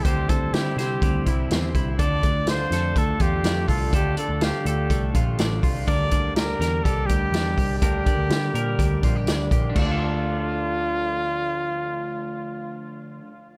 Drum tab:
CC |--------|--------|--------|--------|
HH |xxxxxxxx|xxxxxxxo|xxxxxxxo|xxxxxxxo|
SD |--oo--o-|--oo--o-|--o---o-|--oo--o-|
BD |oo--oo-o|oo--oo-o|o---oo-o|oo--oo-o|

CC |--------|x-------|--------|
HH |xxxxxxxx|--------|--------|
SD |--o---o-|--------|--------|
BD |oo--oo-o|o-------|--------|